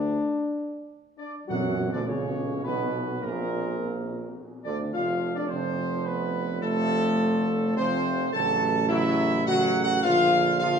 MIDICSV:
0, 0, Header, 1, 6, 480
1, 0, Start_track
1, 0, Tempo, 606061
1, 1188, Time_signature, 3, 2, 24, 8
1, 1188, Tempo, 580271
1, 2148, Tempo, 568182
1, 9020, End_track
2, 0, Start_track
2, 0, Title_t, "Trumpet section"
2, 0, Program_c, 0, 61
2, 936, Note_on_c, 0, 74, 79
2, 1047, Note_off_c, 0, 74, 0
2, 1186, Note_on_c, 0, 78, 88
2, 1525, Note_off_c, 0, 78, 0
2, 1547, Note_on_c, 0, 74, 80
2, 1660, Note_off_c, 0, 74, 0
2, 1661, Note_on_c, 0, 73, 80
2, 2131, Note_on_c, 0, 71, 88
2, 2143, Note_off_c, 0, 73, 0
2, 2591, Note_off_c, 0, 71, 0
2, 2621, Note_on_c, 0, 70, 90
2, 3557, Note_off_c, 0, 70, 0
2, 3815, Note_on_c, 0, 74, 92
2, 3928, Note_off_c, 0, 74, 0
2, 4071, Note_on_c, 0, 77, 92
2, 4408, Note_off_c, 0, 77, 0
2, 4423, Note_on_c, 0, 74, 83
2, 4532, Note_on_c, 0, 72, 93
2, 4541, Note_off_c, 0, 74, 0
2, 5015, Note_on_c, 0, 71, 102
2, 5019, Note_off_c, 0, 72, 0
2, 5496, Note_on_c, 0, 69, 117
2, 5498, Note_off_c, 0, 71, 0
2, 6427, Note_off_c, 0, 69, 0
2, 6454, Note_on_c, 0, 72, 110
2, 6905, Note_off_c, 0, 72, 0
2, 6937, Note_on_c, 0, 81, 117
2, 7382, Note_off_c, 0, 81, 0
2, 7417, Note_on_c, 0, 76, 127
2, 7898, Note_off_c, 0, 76, 0
2, 7901, Note_on_c, 0, 78, 127
2, 8200, Note_off_c, 0, 78, 0
2, 8212, Note_on_c, 0, 78, 127
2, 8366, Note_off_c, 0, 78, 0
2, 8376, Note_on_c, 0, 77, 127
2, 8829, Note_off_c, 0, 77, 0
2, 8848, Note_on_c, 0, 77, 124
2, 9020, Note_off_c, 0, 77, 0
2, 9020, End_track
3, 0, Start_track
3, 0, Title_t, "French horn section"
3, 0, Program_c, 1, 60
3, 0, Note_on_c, 1, 62, 91
3, 673, Note_off_c, 1, 62, 0
3, 934, Note_on_c, 1, 62, 63
3, 1163, Note_on_c, 1, 66, 80
3, 1164, Note_off_c, 1, 62, 0
3, 1511, Note_off_c, 1, 66, 0
3, 1532, Note_on_c, 1, 62, 76
3, 1653, Note_off_c, 1, 62, 0
3, 1655, Note_on_c, 1, 61, 68
3, 2107, Note_off_c, 1, 61, 0
3, 2132, Note_on_c, 1, 59, 73
3, 2591, Note_off_c, 1, 59, 0
3, 2604, Note_on_c, 1, 58, 71
3, 3548, Note_off_c, 1, 58, 0
3, 3820, Note_on_c, 1, 62, 82
3, 4051, Note_off_c, 1, 62, 0
3, 4062, Note_on_c, 1, 65, 83
3, 4403, Note_off_c, 1, 65, 0
3, 4430, Note_on_c, 1, 62, 80
3, 4532, Note_on_c, 1, 60, 79
3, 4544, Note_off_c, 1, 62, 0
3, 5018, Note_on_c, 1, 59, 89
3, 5019, Note_off_c, 1, 60, 0
3, 5494, Note_on_c, 1, 57, 98
3, 5500, Note_off_c, 1, 59, 0
3, 6426, Note_off_c, 1, 57, 0
3, 6457, Note_on_c, 1, 60, 99
3, 6906, Note_off_c, 1, 60, 0
3, 6942, Note_on_c, 1, 69, 109
3, 7384, Note_off_c, 1, 69, 0
3, 7411, Note_on_c, 1, 64, 119
3, 7861, Note_off_c, 1, 64, 0
3, 7902, Note_on_c, 1, 66, 110
3, 8200, Note_off_c, 1, 66, 0
3, 8227, Note_on_c, 1, 66, 104
3, 8374, Note_off_c, 1, 66, 0
3, 8382, Note_on_c, 1, 65, 118
3, 8832, Note_off_c, 1, 65, 0
3, 8860, Note_on_c, 1, 65, 113
3, 9020, Note_off_c, 1, 65, 0
3, 9020, End_track
4, 0, Start_track
4, 0, Title_t, "Trombone section"
4, 0, Program_c, 2, 61
4, 1173, Note_on_c, 2, 54, 84
4, 1517, Note_off_c, 2, 54, 0
4, 1541, Note_on_c, 2, 50, 76
4, 1598, Note_off_c, 2, 50, 0
4, 1660, Note_on_c, 2, 49, 64
4, 2109, Note_off_c, 2, 49, 0
4, 2145, Note_on_c, 2, 47, 79
4, 2597, Note_off_c, 2, 47, 0
4, 2635, Note_on_c, 2, 46, 79
4, 3564, Note_off_c, 2, 46, 0
4, 3829, Note_on_c, 2, 50, 84
4, 3939, Note_off_c, 2, 50, 0
4, 4057, Note_on_c, 2, 53, 75
4, 4059, Note_on_c, 2, 48, 73
4, 4512, Note_off_c, 2, 53, 0
4, 4513, Note_off_c, 2, 48, 0
4, 4547, Note_on_c, 2, 53, 77
4, 4550, Note_on_c, 2, 48, 79
4, 5468, Note_off_c, 2, 53, 0
4, 5469, Note_off_c, 2, 48, 0
4, 5495, Note_on_c, 2, 53, 85
4, 5499, Note_on_c, 2, 48, 85
4, 6427, Note_off_c, 2, 53, 0
4, 6429, Note_off_c, 2, 48, 0
4, 6462, Note_on_c, 2, 53, 88
4, 6465, Note_on_c, 2, 48, 86
4, 6909, Note_off_c, 2, 53, 0
4, 6911, Note_off_c, 2, 48, 0
4, 6943, Note_on_c, 2, 49, 87
4, 6944, Note_on_c, 2, 54, 90
4, 7406, Note_off_c, 2, 49, 0
4, 7408, Note_off_c, 2, 54, 0
4, 7416, Note_on_c, 2, 49, 95
4, 7418, Note_on_c, 2, 54, 97
4, 7864, Note_off_c, 2, 49, 0
4, 7865, Note_off_c, 2, 54, 0
4, 7904, Note_on_c, 2, 49, 93
4, 7908, Note_on_c, 2, 54, 100
4, 8351, Note_off_c, 2, 49, 0
4, 8353, Note_off_c, 2, 54, 0
4, 8389, Note_on_c, 2, 50, 96
4, 8391, Note_on_c, 2, 53, 91
4, 8864, Note_off_c, 2, 50, 0
4, 8865, Note_off_c, 2, 53, 0
4, 8874, Note_on_c, 2, 50, 103
4, 8875, Note_on_c, 2, 53, 105
4, 9020, Note_off_c, 2, 50, 0
4, 9020, Note_off_c, 2, 53, 0
4, 9020, End_track
5, 0, Start_track
5, 0, Title_t, "Tuba"
5, 0, Program_c, 3, 58
5, 0, Note_on_c, 3, 38, 74
5, 147, Note_off_c, 3, 38, 0
5, 1189, Note_on_c, 3, 42, 92
5, 1526, Note_off_c, 3, 42, 0
5, 1551, Note_on_c, 3, 38, 70
5, 1663, Note_off_c, 3, 38, 0
5, 1667, Note_on_c, 3, 37, 69
5, 2112, Note_off_c, 3, 37, 0
5, 2150, Note_on_c, 3, 35, 74
5, 2600, Note_off_c, 3, 35, 0
5, 2634, Note_on_c, 3, 34, 78
5, 3563, Note_off_c, 3, 34, 0
5, 3831, Note_on_c, 3, 38, 79
5, 4057, Note_off_c, 3, 38, 0
5, 4072, Note_on_c, 3, 29, 76
5, 6908, Note_off_c, 3, 29, 0
5, 6951, Note_on_c, 3, 33, 100
5, 8352, Note_off_c, 3, 33, 0
5, 8387, Note_on_c, 3, 34, 98
5, 9020, Note_off_c, 3, 34, 0
5, 9020, End_track
6, 0, Start_track
6, 0, Title_t, "Tam-tam"
6, 1190, Note_on_c, 9, 52, 60
6, 1273, Note_off_c, 9, 52, 0
6, 9020, End_track
0, 0, End_of_file